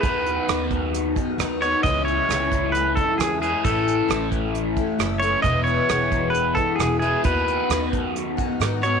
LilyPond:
<<
  \new Staff \with { instrumentName = "Pedal steel guitar" } { \time 4/4 \key b \mixolydian \tempo 4 = 133 b'4. r2 cis''8 | dis''8 cis''4. b'8 a'8 gis'8 gis'8 | a'4. r2 cis''8 | dis''8 cis''4. b'8 a'8 gis'8 gis'8 |
b'4. r2 cis''8 | }
  \new Staff \with { instrumentName = "Twelve-string acoustic guitar" } { \time 4/4 \key b \mixolydian <dis b dis' fis'>4 <dis b dis' fis'>4. <b dis' fis'>8 <dis b dis' fis'>8 <b dis' fis'>8 | <cis e gis cis' e'>4 <e gis cis' e'>4. <gis cis' e'>8 <e gis cis' e'>8 <gis cis' e'>8 | <a, e a cis' e'>4 <e a cis' e'>4. <a cis' e'>8 <e a cis' e'>8 <a cis' e'>8 | <e, b, e gis b e'>4 <e gis b e'>4. <e gis b e'>8 <e gis b e'>8 <e gis b e'>8 |
<dis b dis' fis'>4 <dis b dis' fis'>4. <b dis' fis'>8 <dis b dis' fis'>8 <b dis' fis'>8 | }
  \new Staff \with { instrumentName = "Overdriven electric guitar" } { \time 4/4 \key b \mixolydian <dis b dis' fis'>2.~ <dis b dis' fis'>8 <dis b dis' fis'>8 | <cis e gis cis' e'>2.~ <cis e gis cis' e'>8 <cis e gis cis' e'>8 | <a, e a cis' e'>2.~ <a, e a cis' e'>8 <a, e a cis' e'>8 | <e, b, e gis b e'>2.~ <e, b, e gis b e'>8 <e, b, e gis b e'>8 |
<dis b dis' fis'>2.~ <dis b dis' fis'>8 <dis b dis' fis'>8 | }
  \new Staff \with { instrumentName = "Upright bass" } { \clef bass \time 4/4 \key b \mixolydian dis,4 dis,2 dis,4 | cis,4 cis,2 e,4 | a,,4 a,,2 fis,,4 | e,,4 e,,2 e,,4 |
dis,4 dis,2 gis,4 | }
  \new DrumStaff \with { instrumentName = "Drums" } \drummode { \time 4/4 <hh bd>8 hh8 <hh ss>8 <hh bd>8 hh8 <hh bd>8 <hh ss>8 hh8 | <hh bd>8 hh8 <hh ss>8 <hh bd>8 hh8 <hh bd>8 <hh ss>8 hh8 | <hh bd>8 hh8 <hh ss>8 <hh bd>8 hh8 <hh bd>8 <hh ss>8 hh8 | <hh bd>8 hh8 <hh ss>8 <hh bd>8 hh8 <hh bd>8 <hh ss>8 hh8 |
<hh bd>8 hh8 <hh ss>8 <hh bd>8 hh8 <hh bd>8 <hh ss>8 hh8 | }
>>